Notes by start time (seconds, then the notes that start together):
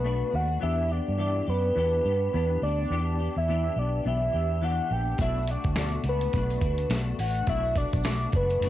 Already playing: B1 B4
0.04 B2 A3 D4 F#4
0.31 D#2 A3 D4 F#4 F#5
0.60 E2 E3 B3 D4 G4 E5
0.88 B3 D4 G4 D5
1.08 G2
1.18 E3 B3 D4 G4 D5
1.47 F#2 B3 D4 G4 B4
1.75 E2 E3 B3 D4 G4
2.05 G2 B3 D4 G4
2.33 E2 E3 B3 D4 G4 B4
2.62 D2 B3 D4 G4 D5
2.90 E2 E3 B3 D4 G4
3.19 B3 D4 G4
3.36 E2 E5
3.48 E3 B3 D4 G4
3.76 B1 B3 D4 G4 D5
4.04 B1 E3 B3 D4 G4 E5
4.32 E2 B3 D4 G4
4.61 E3 B3 D4 G4 F#5
4.90 A#1 B3 D4 G4 G5
5.18 B1 B2 A3 D4 F#4 E5, kick, closed hi-hat, tambourine
5.48 A3 D4 F#4 D5, closed hi-hat, tambourine
5.64 D2, kick, closed hi-hat
5.76 B2 A3 D4 F#4 D5, snare, closed hi-hat, tambourine
6.04 C#2 A3 D4 F#4, closed hi-hat
6.09 B4
6.21 closed hi-hat, tambourine
6.33 B1 B2 A3 D4 F#4, kick, closed hi-hat, tambourine
6.50 closed hi-hat, tambourine
6.61 D2 A3 D4 F#4, kick, closed hi-hat, tambourine
6.78 closed hi-hat
6.89 B1 B2 A3 D4 F#4, snare, closed hi-hat, tambourine
7.18 A1 A3 D4 F#4 F#5, open hi-hat, tambourine
7.35 closed hi-hat
7.47 B1 B2 A3 D4 F#4 E5, kick, closed hi-hat, tambourine
7.75 A3 D4 F#4 D5, kick, closed hi-hat, tambourine
7.93 B1, kick, closed hi-hat, tambourine
8.03 B2 A3 D4 F#4 D5, snare, closed hi-hat, tambourine
8.32 F#1 A3 D4 F#4 B4, kick, closed hi-hat
8.50 closed hi-hat, tambourine
8.61 F#1 B2 A3 D4 F#4, closed hi-hat, tambourine